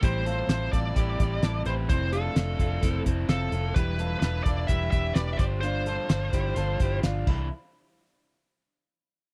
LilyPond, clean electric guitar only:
\new Staff \with { instrumentName = "Clean electric guitar" } { \time 4/4 \key a \minor \tempo 4 = 128 <e' g'>8 <f' a'>4 <f' a'>8 <e' g'>8 <e' g'>8 <e' a'>8 <g' b'>8 | <c' e'>8 <d' f'>4 <d' f'>8 <c' e'>8 <c' e'>8 <c' f'>8 <f' a'>8 | <e' g'>8 <f' a'>4 <f' a'>8 <e' g'>8 <e' g'>8 <g' b'>8 <g' c''>8 | <d' f'>8 <f' a'>4 <e' g'>8 <f' a'>8 <e' g'>8 <d' f'>8 e'8 |
r1 | }